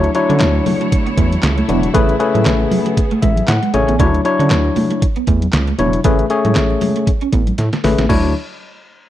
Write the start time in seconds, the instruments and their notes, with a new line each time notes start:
Already playing: string section D3 F#3 A3 E4 C#5
0.04 closed hi-hat, muted conga
0.15 tine electric piano F#3 D4 E4 C#5, muted clean electric guitar stroke, closed hi-hat
0.29 analog synth bass D3, clean electric guitar C#4, closed hi-hat, high conga
0.40 analog synth bass D2, snare, clap, closed hi-hat
0.55 muted conga
0.66 clean electric guitar A3, open hi-hat, high conga, low conga
0.81 clean electric guitar A3, closed hi-hat
0.92 muted clean electric guitar stroke, kick, closed hi-hat
1.06 clean electric guitar B3, closed hi-hat
1.17 analog synth bass E2, clean electric guitar A3, kick, closed hi-hat
1.31 closed hi-hat, high conga
1.42 analog synth bass C#2, snare, clap, closed hi-hat, muted conga
1.58 clean electric guitar A3, closed hi-hat, muted conga
1.68 analog synth bass E1, tine electric piano F#3 D4 E4 F#4, clean electric guitar B3, closed hi-hat, low conga
1.83 closed hi-hat
1.94 analog synth bass A1, string section C#3 B3 G#4, tine electric piano A3 C#4 G#4 B4, clean electric guitar A3, kick, closed hi-hat, low conga
2.09 closed hi-hat, muted conga
2.20 tine electric piano A3 C#4 G#4 B4, muted clean electric guitar stroke, closed hi-hat
2.35 analog synth bass A2, clean electric guitar G#3, closed hi-hat, high conga
2.45 analog synth bass A1, snare, clap, closed hi-hat, muted conga
2.60 muted conga
2.71 clean electric guitar F#3, open hi-hat, high conga, low conga
2.86 clean electric guitar F#3, closed hi-hat
2.97 muted clean electric guitar stroke, kick, closed hi-hat
3.11 clean electric guitar A3, closed hi-hat
3.22 analog synth bass A1, clean electric guitar G#3, tine electric piano E5, kick, closed hi-hat
3.37 closed hi-hat, high conga
3.47 analog synth bass A2, tine electric piano F#5, snare, clap, closed hi-hat, muted conga
3.63 clean electric guitar G#3, closed hi-hat, muted conga
3.74 analog synth bass A1, tine electric piano A3 C#4 G#4 C#5 G#5, muted clean electric guitar stroke, closed hi-hat, low conga
3.88 analog synth bass A1, clean electric guitar B3, closed hi-hat
3.99 analog synth bass D2, tine electric piano F#3 D4 E4 C#5, clean electric guitar D4, kick, closed hi-hat, low conga
4.14 closed hi-hat
4.25 tine electric piano F#3 D4 E4 C#5, muted clean electric guitar stroke, closed hi-hat
4.39 analog synth bass D3, clean electric guitar C#4, closed hi-hat, high conga
4.50 analog synth bass D2, snare, clap, closed hi-hat, muted conga
4.65 muted conga
4.76 clean electric guitar A3, open hi-hat, high conga, low conga
4.91 clean electric guitar A3, closed hi-hat
5.02 muted clean electric guitar stroke, kick, closed hi-hat
5.16 clean electric guitar B3, closed hi-hat, muted conga
5.27 analog synth bass E2, clean electric guitar A3, kick, closed hi-hat
5.42 closed hi-hat, high conga
5.52 analog synth bass C#2, snare, clap, closed hi-hat
5.67 clean electric guitar A3, closed hi-hat, muted conga
5.78 analog synth bass E1, tine electric piano F#3 D4 E4 C#5, clean electric guitar B3, closed hi-hat, low conga
5.93 closed hi-hat
6.04 analog synth bass A1, tine electric piano A3 C#4 G#4 B4, clean electric guitar A3, kick, closed hi-hat, low conga
6.19 closed hi-hat
6.30 tine electric piano A3 C#4 G#4 C#5, muted clean electric guitar stroke, closed hi-hat
6.45 analog synth bass A2, clean electric guitar G#3, closed hi-hat, high conga
6.55 analog synth bass A1, snare, clap, closed hi-hat
6.70 muted conga
6.81 clean electric guitar G#3, open hi-hat, high conga, low conga
6.96 clean electric guitar A3, closed hi-hat
7.07 muted clean electric guitar stroke, kick, closed hi-hat, muted conga
7.21 clean electric guitar C#4, closed hi-hat
7.33 analog synth bass A1, clean electric guitar B3, kick, closed hi-hat
7.47 closed hi-hat, high conga
7.58 analog synth bass A2, snare, closed hi-hat, muted conga
7.73 clean electric guitar A3, snare, closed hi-hat
7.84 analog synth bass A1, tine electric piano A3 C#4 G#4 B4, muted clean electric guitar stroke, snare, open hi-hat, low conga
7.98 analog synth bass A1, clean electric guitar B3, snare, closed hi-hat
8.09 analog synth bass D2, tine electric piano F#3 D4 E4 C#5, clean electric guitar A3, kick, crash, high conga